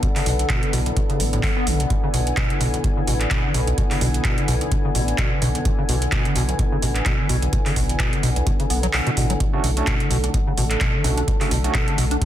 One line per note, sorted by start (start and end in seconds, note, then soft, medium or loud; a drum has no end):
0.00 0.07 B2 medium
0.00 12.25 D3 medium
0.00 9.36 B3 medium
0.00 12.25 E4 medium
0.00 1.89 A4 medium
0.00 12.25 A4 medium
0.00 12.25 D5 medium
0.00 12.25 F#5 medium
0.00 kick loud
0.00 closed hi-hat medium
0.16 0.22 C#3 medium
0.16 clap soft
0.16 open hi-hat medium
0.26 0.45 B1 loud
0.26 0.33 B2 medium
0.26 open hi-hat loud
0.39 closed hi-hat medium
0.49 0.64 B2 medium
0.49 kick loud
0.49 clap loud
0.49 closed hi-hat medium
0.63 0.71 D3 medium
0.63 closed hi-hat soft
0.73 0.92 B1 medium
0.73 0.80 B2 medium
0.73 open hi-hat loud
0.86 0.92 B1 medium
0.86 closed hi-hat soft
0.96 1.01 B2 medium
0.96 kick loud
0.96 closed hi-hat medium
1.10 1.21 C#3 medium
1.10 closed hi-hat soft
1.20 1.39 A1 loud
1.20 1.24 B3 medium
1.20 open hi-hat loud
1.33 1.42 A2 medium
1.33 closed hi-hat soft
1.43 1.51 D3 loud
1.43 kick loud
1.43 clap loud
1.43 open hi-hat medium
1.57 1.68 B3 loud
1.67 1.86 B1 medium
1.67 1.81 D3 medium
1.67 open hi-hat loud
1.80 1.86 B2 medium
1.80 closed hi-hat soft
1.90 1.95 B2 medium
1.90 9.39 G#5 medium
1.90 kick loud
1.90 closed hi-hat medium
2.03 2.09 C#3 medium
2.14 2.33 B1 loud
2.14 2.21 B2 medium
2.14 open hi-hat loud
2.27 closed hi-hat medium
2.37 2.52 B2 medium
2.37 kick loud
2.37 clap loud
2.37 closed hi-hat medium
2.50 2.59 D3 medium
2.50 closed hi-hat soft
2.61 2.80 B1 medium
2.61 2.68 B2 loud
2.61 open hi-hat loud
2.74 2.79 B1 medium
2.74 closed hi-hat soft
2.84 2.88 B2 medium
2.84 kick loud
2.84 closed hi-hat medium
2.97 3.03 C#3 medium
3.07 3.27 A1 loud
3.07 3.15 B2 medium
3.07 open hi-hat loud
3.20 clap soft
3.20 closed hi-hat soft
3.31 3.45 B2 medium
3.31 kick loud
3.31 clap loud
3.31 closed hi-hat medium
3.44 3.53 D3 medium
3.54 3.73 B1 medium
3.54 3.62 B2 loud
3.54 open hi-hat loud
3.67 3.73 B1 medium
3.67 closed hi-hat soft
3.78 3.82 B2 medium
3.78 kick loud
3.78 closed hi-hat medium
3.91 3.97 C#3 medium
3.91 clap soft
3.91 open hi-hat medium
4.01 4.20 B1 loud
4.01 4.08 B2 medium
4.01 open hi-hat loud
4.14 closed hi-hat medium
4.24 4.39 B2 medium
4.24 kick loud
4.24 clap loud
4.24 closed hi-hat medium
4.38 4.46 D3 medium
4.38 closed hi-hat soft
4.48 4.67 B1 medium
4.48 4.55 B2 medium
4.48 open hi-hat loud
4.61 4.67 B1 medium
4.61 closed hi-hat soft
4.72 4.76 B2 medium
4.72 kick loud
4.72 closed hi-hat medium
4.85 4.90 C#3 medium
4.95 5.14 A1 loud
4.95 5.02 B2 medium
4.95 open hi-hat loud
5.08 closed hi-hat soft
5.18 5.33 B2 medium
5.18 kick loud
5.18 clap loud
5.18 closed hi-hat medium
5.31 5.40 D3 medium
5.42 5.61 B1 medium
5.42 5.49 B2 loud
5.42 open hi-hat loud
5.55 5.61 B1 medium
5.55 closed hi-hat medium
5.65 5.70 B2 medium
5.65 kick loud
5.65 closed hi-hat medium
5.78 5.84 C#3 medium
5.89 6.08 B1 loud
5.89 5.96 B2 medium
5.89 open hi-hat loud
6.02 closed hi-hat medium
6.12 6.27 B2 medium
6.12 kick loud
6.12 clap loud
6.12 closed hi-hat medium
6.25 6.34 D3 medium
6.25 closed hi-hat soft
6.35 6.55 B1 medium
6.35 6.43 B2 loud
6.35 open hi-hat loud
6.49 6.54 B1 medium
6.49 closed hi-hat medium
6.59 6.63 B2 medium
6.59 kick loud
6.59 closed hi-hat medium
6.72 6.78 C#3 medium
6.82 7.02 A1 loud
6.82 6.90 B2 medium
6.82 open hi-hat medium
6.95 clap soft
6.95 closed hi-hat medium
7.06 7.21 B2 medium
7.06 kick loud
7.06 clap loud
7.06 closed hi-hat medium
7.19 7.28 D3 medium
7.29 7.48 B1 medium
7.29 7.37 B2 loud
7.29 open hi-hat loud
7.42 7.48 B1 medium
7.42 closed hi-hat medium
7.53 7.57 B2 medium
7.53 kick loud
7.53 closed hi-hat medium
7.66 7.72 C#3 medium
7.66 clap soft
7.66 open hi-hat medium
7.76 7.95 B1 loud
7.76 7.83 B2 medium
7.76 kick medium
7.76 open hi-hat loud
7.89 closed hi-hat medium
7.99 8.14 B2 medium
7.99 kick loud
7.99 clap loud
7.99 closed hi-hat medium
8.13 8.21 D3 medium
8.13 closed hi-hat soft
8.23 8.42 B1 medium
8.23 8.30 B2 medium
8.23 open hi-hat loud
8.36 8.42 B1 medium
8.36 closed hi-hat medium
8.47 8.51 B2 medium
8.47 kick loud
8.47 closed hi-hat medium
8.60 8.65 C#3 medium
8.60 closed hi-hat soft
8.70 8.89 B1 loud
8.70 8.81 B3 medium
8.70 open hi-hat loud
8.83 8.86 F#3 loud
8.83 closed hi-hat medium
8.93 9.01 B1 medium
8.93 clap loud
8.93 open hi-hat medium
9.06 9.10 B2 medium
9.06 closed hi-hat soft
9.17 9.36 A1 medium
9.17 9.28 B2 medium
9.17 open hi-hat loud
9.30 9.33 F#3 medium
9.30 closed hi-hat medium
9.40 9.45 B2 medium
9.40 12.25 A3 medium
9.40 12.25 A4 medium
9.40 kick loud
9.40 closed hi-hat medium
9.53 9.59 C#3 medium
9.53 9.70 A3 medium
9.53 9.70 C#4 medium
9.53 9.70 D4 medium
9.53 9.70 F#4 loud
9.64 9.83 B1 loud
9.64 9.71 B2 medium
9.64 open hi-hat loud
9.77 9.94 A3 medium
9.77 9.94 C#4 medium
9.77 9.94 D4 medium
9.77 9.94 F#4 medium
9.77 closed hi-hat medium
9.87 10.02 B2 medium
9.87 kick loud
9.87 clap loud
9.87 closed hi-hat medium
10.00 10.09 D3 medium
10.00 closed hi-hat soft
10.11 10.30 B1 medium
10.11 10.18 B2 loud
10.11 open hi-hat loud
10.24 10.29 D4 medium
10.24 closed hi-hat medium
10.34 10.38 B2 medium
10.34 kick loud
10.34 closed hi-hat medium
10.47 10.53 C#3 medium
10.57 10.77 A1 loud
10.57 10.65 B2 medium
10.57 open hi-hat loud
10.70 clap soft
10.70 closed hi-hat medium
10.81 10.96 B2 medium
10.81 kick loud
10.81 clap loud
10.81 closed hi-hat medium
10.94 11.03 D3 medium
11.04 11.23 B1 medium
11.04 11.12 B2 loud
11.04 11.22 A3 medium
11.04 11.22 C#4 medium
11.04 11.22 D4 medium
11.04 11.22 F#4 medium
11.04 open hi-hat loud
11.17 11.23 D4 medium
11.17 closed hi-hat medium
11.28 11.32 B2 medium
11.28 kick loud
11.28 closed hi-hat medium
11.41 11.47 C#3 medium
11.41 11.50 A3 medium
11.41 11.50 C#4 medium
11.41 11.50 D4 medium
11.41 11.50 F#4 medium
11.41 clap soft
11.41 open hi-hat medium
11.51 11.70 B1 loud
11.51 11.58 B2 medium
11.51 open hi-hat loud
11.64 11.74 A3 loud
11.64 11.74 C#4 medium
11.64 11.74 D4 medium
11.64 11.74 F#4 loud
11.64 closed hi-hat medium
11.74 11.89 B2 medium
11.74 kick loud
11.74 clap loud
11.74 closed hi-hat medium
11.88 11.96 D3 medium
11.88 closed hi-hat soft
11.98 12.17 B1 medium
11.98 12.05 B2 medium
11.98 open hi-hat loud
12.11 12.17 D4 medium
12.11 closed hi-hat medium
12.21 12.25 B2 medium
12.21 kick loud
12.21 closed hi-hat medium